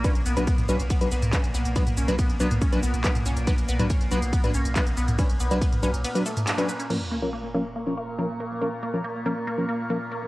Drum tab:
CC |----------------|----------------|----------------|----------------|
RD |x---x---x---x---|x---x---x---x---|x---x---x---x---|x---x---x---x---|
HH |xxoxxxoxxxoxxxox|xxoxxxoxxxoxxxox|xxoxxxoxxxoxxxox|xxoxxxoxxxoxxxox|
SH |xxxxx-xxxxxxxxxx|xxxxx-xxxxxxxxxx|xxxxx-xxxxxxxxxx|xxxxx-xxxxxxxxxx|
CP |------------x---|------------x---|------------x---|------------x---|
T2 |-----o-----o----|-o-----o-----o--|---o-----o-----o|-----o-----o----|
BD |o---o---o---o---|o---o---o---o---|o---o---o---o---|o---o-----------|

CC |x---------------|----------------|
RD |----------------|----------------|
HH |----------------|----------------|
SH |----------------|----------------|
CP |----------------|----------------|
T2 |----------------|----------------|
BD |----------------|----------------|